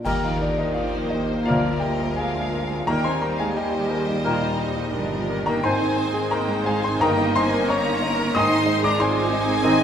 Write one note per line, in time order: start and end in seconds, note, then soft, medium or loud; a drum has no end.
0.02 0.31 D#3 medium
0.02 0.22 G3 medium
0.02 5.58 A#3 medium
0.02 2.83 A#3 medium
0.02 0.30 A#3 medium
0.02 1.42 D#4 medium
0.02 0.22 G4 medium
0.02 2.83 A#4 medium
0.02 0.71 A#4 medium
0.02 0.31 A#4 medium
0.02 0.22 D#5 medium
0.02 0.21 G5 medium
0.02 0.38 A#5 medium
0.02 concert bass drum medium
0.02 crash medium
0.06 1.43 D#2 medium
0.06 5.61 A#2 medium
0.06 1.43 D#3 medium
0.23 0.41 F3 medium
0.23 0.53 D#4 medium
0.23 0.41 F4 medium
0.23 0.40 D5 medium
0.23 0.40 F5 medium
0.40 0.58 D3 medium
0.40 0.58 D4 medium
0.40 0.70 G4 medium
0.40 0.58 A#4 medium
0.40 0.57 D5 medium
0.58 0.76 D#3 medium
0.58 0.75 D#4 medium
0.58 0.87 A#4 medium
0.58 0.76 C5 medium
0.58 0.75 D#5 medium
0.74 1.11 F3 medium
0.74 1.08 F4 medium
0.74 1.47 C5 medium
0.74 1.11 D5 medium
0.74 1.08 F5 medium
0.79 1.05 D#4 medium
0.96 1.23 A#3 medium
1.10 1.46 D#3 medium
1.10 1.44 D#4 medium
1.10 1.46 C5 medium
1.10 1.43 D#5 medium
1.15 1.41 G4 medium
1.32 1.48 A#4 soft
1.45 2.85 D2 medium
1.45 1.71 F3 medium
1.45 1.82 F3 medium
1.45 2.85 F3 medium
1.45 1.70 A#3 medium
1.45 2.16 F4 medium
1.45 1.63 F4 medium
1.45 2.87 A#4 medium
1.45 1.72 A#4 medium
1.45 1.81 D5 medium
1.45 1.79 D5 medium
1.45 1.79 F5 medium
1.45 1.78 A#5 medium
1.50 2.86 D2 medium
1.65 1.93 F4 medium
1.80 2.18 G3 medium
1.80 2.15 G4 medium
1.80 2.11 A#4 medium
1.80 2.17 D#5 medium
1.80 2.14 G5 medium
1.99 2.28 F4 medium
2.16 2.88 G#3 medium
2.16 2.46 A#3 medium
2.16 2.86 F4 medium
2.16 2.84 G#4 medium
2.16 2.88 F5 medium
2.16 2.84 F5 medium
2.16 2.83 G#5 medium
2.35 2.63 F4 medium
2.53 2.81 A#4 medium
2.71 2.88 F4 medium
2.87 4.21 D#2 medium
2.87 4.90 D#2 medium
2.87 3.11 D#3 medium
2.87 4.22 G3 medium
2.87 5.64 G3 medium
2.87 3.11 A#3 medium
2.87 3.05 A#3 medium
2.87 3.54 D#4 medium
2.87 5.60 G4 medium
2.87 3.54 A#4 medium
2.87 3.11 A#4 medium
2.87 3.04 A#4 medium
2.87 3.04 G5 medium
2.87 3.03 A#5 loud
2.87 3.19 A#5 medium
3.04 3.22 C4 medium
3.04 3.32 D#4 medium
3.04 3.21 C5 medium
3.04 3.21 G#5 medium
3.04 3.20 C6 medium
3.20 3.39 A#3 medium
3.20 3.49 A#4 medium
3.20 3.38 G5 medium
3.20 3.37 A#5 medium
3.36 3.56 G#3 medium
3.36 3.67 D#4 medium
3.36 3.55 G#4 medium
3.36 3.54 F5 medium
3.36 3.55 G#5 medium
3.55 5.43 G3 medium
3.55 3.84 A#3 medium
3.55 4.24 G4 medium
3.55 5.44 G4 medium
3.55 4.94 C5 medium
3.55 5.42 D#5 medium
3.55 5.44 D#5 medium
3.55 5.43 G5 medium
3.73 4.01 D#4 medium
3.91 4.18 A#4 medium
4.08 4.35 D#4 medium
4.24 4.53 A#2 medium
4.24 4.49 D#3 medium
4.24 4.93 G3 medium
4.24 4.48 A#3 medium
4.24 4.59 F4 medium
4.24 4.48 A#4 medium
4.24 4.57 A#5 medium
4.42 4.69 D#4 medium
4.58 4.94 D#4 medium
4.58 4.86 A#4 medium
4.76 5.04 D#4 medium
4.94 5.63 G1 medium
4.94 5.29 F3 medium
4.94 5.23 A#3 medium
4.94 5.63 D4 medium
4.94 5.62 A#4 medium
5.13 5.41 D#4 medium
5.30 5.63 D#3 medium
5.30 5.46 A#4 medium
5.46 5.64 A#3 medium
5.46 5.64 D#4 medium
5.46 5.63 A#4 medium
5.46 5.64 G5 medium
5.46 5.62 A#5 medium
5.63 7.02 G#1 medium
5.63 6.97 G#2 medium
5.63 5.88 D#3 medium
5.63 7.66 D#3 medium
5.63 9.84 D#3 medium
5.63 6.99 G#3 medium
5.63 6.32 C4 medium
5.63 6.31 C4 medium
5.63 7.02 C4 medium
5.63 5.87 D#4 medium
5.63 9.84 D#4 medium
5.63 5.87 C5 medium
5.63 5.96 C5 medium
5.63 6.31 C5 medium
5.63 5.95 G#5 medium
5.63 6.31 G#5 medium
5.63 6.28 G#5 medium
5.63 6.27 C6 loud
5.81 6.08 D#4 medium
5.97 6.25 C5 medium
6.14 6.41 G#4 medium
6.31 6.66 A#3 medium
6.31 6.59 D#4 medium
6.31 8.34 D#4 medium
6.31 6.64 A#4 medium
6.31 7.00 C5 medium
6.31 6.66 G5 medium
6.31 6.63 A#5 medium
6.48 6.76 G#3 medium
6.64 6.84 G#3 medium
6.64 6.79 G#4 medium
6.64 6.84 C5 medium
6.64 6.84 F5 medium
6.64 6.82 G#5 loud
6.81 7.01 C4 medium
6.81 7.00 G#4 medium
6.81 7.01 G#5 medium
6.81 7.00 C6 medium
6.86 7.01 C5 medium
7.00 8.33 G1 medium
7.00 8.31 G2 medium
7.00 7.26 D#3 medium
7.00 8.19 A#3 medium
7.00 7.36 A#3 medium
7.00 8.37 A#3 medium
7.00 7.26 D#4 medium
7.00 7.34 A#4 medium
7.00 7.26 D#5 medium
7.00 7.71 D#5 medium
7.00 7.35 G5 medium
7.00 7.34 G5 medium
7.00 7.33 A#5 loud
7.00 7.33 A#5 medium
7.18 7.46 D#4 medium
7.36 7.70 C4 medium
7.36 7.68 C5 medium
7.36 7.63 D#5 medium
7.36 7.69 G#5 medium
7.36 7.67 C6 loud
7.54 7.80 A#4 medium
7.68 8.35 A#3 medium
7.68 8.35 C#4 loud
7.68 7.96 D#4 medium
7.68 8.03 C#5 medium
7.68 8.32 C#5 medium
7.68 8.32 A#5 medium
7.68 8.36 A#5 loud
7.68 8.31 C#6 loud
7.86 8.13 A#3 medium
8.02 8.36 A#4 medium
8.02 8.29 D#5 medium
8.19 8.36 A#4 medium
8.35 9.84 G#1 medium
8.35 9.60 G#2 medium
8.35 8.58 D#3 medium
8.35 9.61 G#3 medium
8.35 9.84 G#3 medium
8.35 9.84 C4 medium
8.35 8.98 D#4 medium
8.35 8.84 D#4 loud
8.35 8.59 D#4 medium
8.35 8.99 C5 medium
8.35 8.58 D#5 medium
8.35 8.65 D#5 medium
8.35 8.66 G#5 medium
8.35 8.84 C6 loud
8.35 8.81 C6 medium
8.35 8.80 D#6 loud
8.50 8.77 D#4 medium
8.66 8.92 D#5 medium
8.83 9.00 D4 loud
8.83 9.08 G#4 medium
8.83 8.99 D5 medium
8.83 8.99 A#5 loud
8.83 8.99 D6 loud
8.99 9.84 C4 loud
8.99 9.25 D#4 medium
8.99 9.31 F4 medium
8.99 9.62 C5 medium
8.99 9.84 C5 medium
8.99 9.84 G#5 loud
8.99 9.84 G#5 medium
8.99 9.84 C6 loud
9.17 9.41 G#3 medium
9.30 9.63 D#4 medium
9.30 9.58 D#5 medium
9.49 9.75 G#4 medium
9.62 9.84 D#3 loud
9.62 9.84 D#3 medium
9.62 9.84 G#3 medium
9.62 9.84 C4 medium
9.62 9.84 D#4 medium
9.62 9.84 D#5 loud
9.62 9.84 D#5 medium
9.62 9.84 G#5 loud